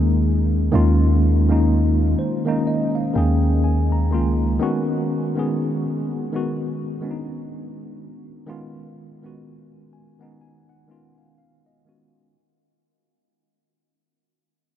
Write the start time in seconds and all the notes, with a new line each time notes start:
Already playing: D#2 D#3 G#3 A#3 C#4 D#4 G#4
0.72 D#2 D#3 G#3 A#3 C#4 F4
1.48 D#3 G#3 A#3 C#4 D#4
2.19 C5
2.45 D#3 G#3 A#3 C#4 D#4
2.67 D#5
2.95 F5
3.14 D#2 D#3 G#3 A#3 C#4 G#4 G5
3.64 G#5
3.92 A#5
4.11 C#2 D#3 G#3 A#3 C#4 F4 C6
4.59 D#3 G#3 B3 C#4 F#4
5.36 D#3 G#3 B3 C#4 G#4
6.32 D#3 G#3 B3 C#4 F#4
7.01 D#3 G#3 B3 C#4 D4
7.11 D#4
8.46 D#3 G#3 B3 C#4 F4
9.22 D#3 G#3 B3 C#4 F#4
9.93 G#5
10.19 D#3 G#3 B3 C#4 D#4 F#5
10.41 G#5
10.69 F#5
10.88 D#3 G#3 B3 C#4 F4
11.18 F5
11.38 F5
11.66 D#5
11.85 D#3 G#3 B3 C#4 F#4